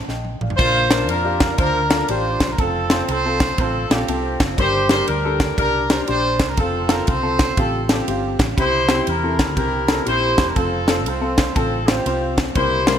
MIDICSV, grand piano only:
0, 0, Header, 1, 2, 480
1, 0, Start_track
1, 0, Tempo, 498753
1, 565, Time_signature, 4, 2, 24, 8
1, 12499, End_track
2, 0, Start_track
2, 0, Title_t, "Grand piano"
2, 0, Program_c, 0, 0
2, 89, Note_on_c, 0, 79, 55
2, 92, Note_on_c, 0, 75, 47
2, 377, Note_off_c, 0, 79, 0
2, 379, Note_off_c, 0, 75, 0
2, 397, Note_on_c, 0, 74, 42
2, 399, Note_on_c, 0, 77, 60
2, 563, Note_on_c, 0, 62, 65
2, 567, Note_on_c, 0, 65, 63
2, 572, Note_on_c, 0, 46, 61
2, 573, Note_on_c, 0, 70, 73
2, 775, Note_off_c, 0, 62, 0
2, 776, Note_off_c, 0, 65, 0
2, 779, Note_off_c, 0, 70, 0
2, 852, Note_off_c, 0, 74, 0
2, 853, Note_off_c, 0, 77, 0
2, 866, Note_on_c, 0, 65, 79
2, 869, Note_on_c, 0, 62, 83
2, 874, Note_on_c, 0, 70, 88
2, 1053, Note_off_c, 0, 65, 0
2, 1055, Note_off_c, 0, 62, 0
2, 1058, Note_off_c, 0, 70, 0
2, 1197, Note_on_c, 0, 65, 66
2, 1200, Note_on_c, 0, 62, 76
2, 1201, Note_on_c, 0, 67, 80
2, 1318, Note_off_c, 0, 46, 0
2, 1445, Note_off_c, 0, 65, 0
2, 1446, Note_off_c, 0, 62, 0
2, 1447, Note_off_c, 0, 67, 0
2, 1515, Note_on_c, 0, 62, 77
2, 1522, Note_on_c, 0, 72, 95
2, 1524, Note_on_c, 0, 65, 77
2, 1732, Note_off_c, 0, 62, 0
2, 1735, Note_off_c, 0, 72, 0
2, 1736, Note_off_c, 0, 65, 0
2, 1827, Note_on_c, 0, 62, 75
2, 1834, Note_on_c, 0, 65, 74
2, 1839, Note_on_c, 0, 69, 79
2, 1951, Note_off_c, 0, 62, 0
2, 1954, Note_off_c, 0, 65, 0
2, 1957, Note_off_c, 0, 69, 0
2, 2016, Note_on_c, 0, 62, 76
2, 2019, Note_on_c, 0, 65, 67
2, 2022, Note_on_c, 0, 67, 83
2, 2384, Note_off_c, 0, 62, 0
2, 2385, Note_off_c, 0, 65, 0
2, 2387, Note_off_c, 0, 67, 0
2, 2490, Note_on_c, 0, 60, 72
2, 2493, Note_on_c, 0, 65, 66
2, 2497, Note_on_c, 0, 69, 89
2, 2700, Note_off_c, 0, 60, 0
2, 2701, Note_off_c, 0, 65, 0
2, 2703, Note_off_c, 0, 69, 0
2, 2796, Note_on_c, 0, 60, 78
2, 2798, Note_on_c, 0, 65, 73
2, 2805, Note_on_c, 0, 72, 96
2, 2980, Note_off_c, 0, 60, 0
2, 2981, Note_off_c, 0, 65, 0
2, 2984, Note_off_c, 0, 72, 0
2, 3130, Note_on_c, 0, 60, 79
2, 3133, Note_on_c, 0, 65, 75
2, 3134, Note_on_c, 0, 69, 86
2, 3372, Note_off_c, 0, 60, 0
2, 3373, Note_off_c, 0, 65, 0
2, 3374, Note_off_c, 0, 69, 0
2, 3454, Note_on_c, 0, 60, 88
2, 3455, Note_on_c, 0, 72, 92
2, 3457, Note_on_c, 0, 65, 79
2, 3662, Note_off_c, 0, 60, 0
2, 3662, Note_off_c, 0, 72, 0
2, 3663, Note_off_c, 0, 65, 0
2, 3751, Note_on_c, 0, 65, 70
2, 3752, Note_on_c, 0, 60, 70
2, 3761, Note_on_c, 0, 69, 85
2, 3873, Note_off_c, 0, 65, 0
2, 3874, Note_off_c, 0, 60, 0
2, 3879, Note_off_c, 0, 69, 0
2, 3932, Note_on_c, 0, 60, 87
2, 3935, Note_on_c, 0, 65, 65
2, 3935, Note_on_c, 0, 69, 84
2, 4302, Note_off_c, 0, 60, 0
2, 4303, Note_off_c, 0, 69, 0
2, 4304, Note_off_c, 0, 65, 0
2, 4397, Note_on_c, 0, 62, 78
2, 4403, Note_on_c, 0, 43, 64
2, 4409, Note_on_c, 0, 67, 65
2, 4410, Note_on_c, 0, 70, 72
2, 4614, Note_off_c, 0, 62, 0
2, 4620, Note_off_c, 0, 67, 0
2, 4620, Note_off_c, 0, 70, 0
2, 4715, Note_on_c, 0, 62, 81
2, 4716, Note_on_c, 0, 67, 82
2, 4717, Note_on_c, 0, 70, 96
2, 4900, Note_off_c, 0, 62, 0
2, 4900, Note_off_c, 0, 67, 0
2, 4901, Note_off_c, 0, 70, 0
2, 5047, Note_on_c, 0, 62, 79
2, 5052, Note_on_c, 0, 69, 86
2, 5055, Note_on_c, 0, 67, 73
2, 5154, Note_off_c, 0, 43, 0
2, 5291, Note_off_c, 0, 62, 0
2, 5294, Note_off_c, 0, 69, 0
2, 5295, Note_off_c, 0, 67, 0
2, 5374, Note_on_c, 0, 67, 79
2, 5375, Note_on_c, 0, 62, 86
2, 5381, Note_on_c, 0, 70, 82
2, 5582, Note_off_c, 0, 67, 0
2, 5583, Note_off_c, 0, 62, 0
2, 5586, Note_off_c, 0, 70, 0
2, 5679, Note_on_c, 0, 67, 63
2, 5680, Note_on_c, 0, 62, 69
2, 5683, Note_on_c, 0, 72, 85
2, 5798, Note_off_c, 0, 67, 0
2, 5799, Note_off_c, 0, 62, 0
2, 5800, Note_off_c, 0, 72, 0
2, 5850, Note_on_c, 0, 67, 76
2, 5851, Note_on_c, 0, 62, 75
2, 5853, Note_on_c, 0, 72, 89
2, 6222, Note_off_c, 0, 62, 0
2, 6222, Note_off_c, 0, 67, 0
2, 6223, Note_off_c, 0, 72, 0
2, 6322, Note_on_c, 0, 60, 68
2, 6327, Note_on_c, 0, 65, 63
2, 6333, Note_on_c, 0, 69, 89
2, 6537, Note_off_c, 0, 60, 0
2, 6539, Note_off_c, 0, 65, 0
2, 6542, Note_off_c, 0, 69, 0
2, 6627, Note_on_c, 0, 60, 81
2, 6630, Note_on_c, 0, 65, 80
2, 6633, Note_on_c, 0, 69, 95
2, 6816, Note_off_c, 0, 60, 0
2, 6818, Note_off_c, 0, 65, 0
2, 6819, Note_off_c, 0, 69, 0
2, 6949, Note_on_c, 0, 60, 72
2, 6956, Note_on_c, 0, 65, 65
2, 6957, Note_on_c, 0, 69, 87
2, 7202, Note_off_c, 0, 60, 0
2, 7206, Note_off_c, 0, 65, 0
2, 7206, Note_off_c, 0, 69, 0
2, 7288, Note_on_c, 0, 60, 81
2, 7289, Note_on_c, 0, 65, 77
2, 7296, Note_on_c, 0, 67, 91
2, 7500, Note_off_c, 0, 60, 0
2, 7500, Note_off_c, 0, 65, 0
2, 7504, Note_off_c, 0, 67, 0
2, 7594, Note_on_c, 0, 65, 59
2, 7595, Note_on_c, 0, 60, 75
2, 7603, Note_on_c, 0, 69, 75
2, 7716, Note_off_c, 0, 65, 0
2, 7717, Note_off_c, 0, 60, 0
2, 7720, Note_off_c, 0, 69, 0
2, 7775, Note_on_c, 0, 60, 75
2, 7776, Note_on_c, 0, 65, 65
2, 7782, Note_on_c, 0, 67, 78
2, 8144, Note_off_c, 0, 60, 0
2, 8145, Note_off_c, 0, 65, 0
2, 8147, Note_off_c, 0, 67, 0
2, 8244, Note_on_c, 0, 60, 69
2, 8247, Note_on_c, 0, 64, 65
2, 8249, Note_on_c, 0, 67, 83
2, 8251, Note_on_c, 0, 48, 59
2, 8457, Note_off_c, 0, 60, 0
2, 8459, Note_off_c, 0, 64, 0
2, 8460, Note_off_c, 0, 67, 0
2, 8551, Note_on_c, 0, 60, 88
2, 8558, Note_on_c, 0, 64, 77
2, 8561, Note_on_c, 0, 67, 97
2, 8738, Note_off_c, 0, 60, 0
2, 8742, Note_off_c, 0, 64, 0
2, 8743, Note_off_c, 0, 67, 0
2, 8884, Note_on_c, 0, 60, 78
2, 8887, Note_on_c, 0, 64, 73
2, 8890, Note_on_c, 0, 69, 84
2, 8997, Note_off_c, 0, 48, 0
2, 9129, Note_off_c, 0, 60, 0
2, 9130, Note_off_c, 0, 64, 0
2, 9132, Note_off_c, 0, 69, 0
2, 9203, Note_on_c, 0, 60, 82
2, 9207, Note_on_c, 0, 64, 68
2, 9210, Note_on_c, 0, 67, 90
2, 9416, Note_off_c, 0, 60, 0
2, 9418, Note_off_c, 0, 64, 0
2, 9420, Note_off_c, 0, 67, 0
2, 9506, Note_on_c, 0, 60, 74
2, 9508, Note_on_c, 0, 64, 65
2, 9511, Note_on_c, 0, 69, 86
2, 9631, Note_off_c, 0, 60, 0
2, 9632, Note_off_c, 0, 64, 0
2, 9633, Note_off_c, 0, 69, 0
2, 9675, Note_on_c, 0, 60, 76
2, 9678, Note_on_c, 0, 64, 74
2, 9682, Note_on_c, 0, 67, 76
2, 10052, Note_off_c, 0, 60, 0
2, 10054, Note_off_c, 0, 64, 0
2, 10056, Note_off_c, 0, 67, 0
2, 10151, Note_on_c, 0, 60, 73
2, 10155, Note_on_c, 0, 65, 65
2, 10160, Note_on_c, 0, 69, 78
2, 10369, Note_off_c, 0, 60, 0
2, 10371, Note_off_c, 0, 65, 0
2, 10374, Note_off_c, 0, 69, 0
2, 10463, Note_on_c, 0, 60, 83
2, 10466, Note_on_c, 0, 65, 79
2, 10470, Note_on_c, 0, 69, 96
2, 10652, Note_off_c, 0, 60, 0
2, 10653, Note_off_c, 0, 65, 0
2, 10655, Note_off_c, 0, 69, 0
2, 10787, Note_on_c, 0, 65, 73
2, 10789, Note_on_c, 0, 60, 79
2, 10791, Note_on_c, 0, 69, 83
2, 11038, Note_off_c, 0, 65, 0
2, 11039, Note_off_c, 0, 60, 0
2, 11040, Note_off_c, 0, 69, 0
2, 11119, Note_on_c, 0, 65, 75
2, 11121, Note_on_c, 0, 60, 78
2, 11129, Note_on_c, 0, 69, 85
2, 11332, Note_off_c, 0, 65, 0
2, 11333, Note_off_c, 0, 60, 0
2, 11337, Note_off_c, 0, 69, 0
2, 11431, Note_on_c, 0, 60, 74
2, 11434, Note_on_c, 0, 65, 66
2, 11438, Note_on_c, 0, 72, 78
2, 11551, Note_off_c, 0, 60, 0
2, 11552, Note_off_c, 0, 65, 0
2, 11554, Note_off_c, 0, 72, 0
2, 11606, Note_on_c, 0, 60, 75
2, 11608, Note_on_c, 0, 65, 77
2, 11615, Note_on_c, 0, 72, 90
2, 11974, Note_off_c, 0, 60, 0
2, 11975, Note_off_c, 0, 65, 0
2, 11979, Note_off_c, 0, 72, 0
2, 12085, Note_on_c, 0, 58, 69
2, 12087, Note_on_c, 0, 55, 72
2, 12088, Note_on_c, 0, 48, 61
2, 12090, Note_on_c, 0, 60, 70
2, 12091, Note_on_c, 0, 64, 62
2, 12094, Note_on_c, 0, 70, 76
2, 12292, Note_off_c, 0, 58, 0
2, 12293, Note_off_c, 0, 55, 0
2, 12295, Note_off_c, 0, 60, 0
2, 12296, Note_off_c, 0, 64, 0
2, 12297, Note_off_c, 0, 70, 0
2, 12384, Note_on_c, 0, 55, 88
2, 12385, Note_on_c, 0, 58, 79
2, 12387, Note_on_c, 0, 60, 87
2, 12388, Note_on_c, 0, 64, 80
2, 12388, Note_on_c, 0, 70, 100
2, 12499, Note_off_c, 0, 48, 0
2, 12499, Note_off_c, 0, 55, 0
2, 12499, Note_off_c, 0, 58, 0
2, 12499, Note_off_c, 0, 60, 0
2, 12499, Note_off_c, 0, 64, 0
2, 12499, Note_off_c, 0, 70, 0
2, 12499, End_track
0, 0, End_of_file